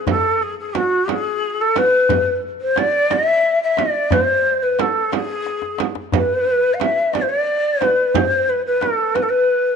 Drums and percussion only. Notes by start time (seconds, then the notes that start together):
0.07 tombak dum, frame drum
0.24 tombak ka
0.41 tombak ka
0.75 tombak tek, frame drum
1.08 tombak tek, frame drum
1.76 tombak tek, frame drum
2.09 tombak dum, frame drum
2.26 tombak ka
2.43 tombak ka
2.76 tombak tek, frame drum
3.10 tombak tek, frame drum
3.77 tombak tek, frame drum
4.11 tombak dum, frame drum
4.45 tombak ka
4.79 tombak tek, frame drum
5.12 tombak tek, frame drum
5.46 tombak tek
5.62 tombak ka
5.78 tombak tek, frame drum
5.95 tombak ka
6.12 tombak dum, frame drum
6.30 tombak ka
6.47 tombak ka
6.80 tombak tek, frame drum
7.13 tombak tek, frame drum
7.81 tombak tek, frame drum
8.15 tombak dum, frame drum
8.31 tombak ka
8.48 tombak ka
8.81 tombak tek, frame drum
9.15 tombak tek, frame drum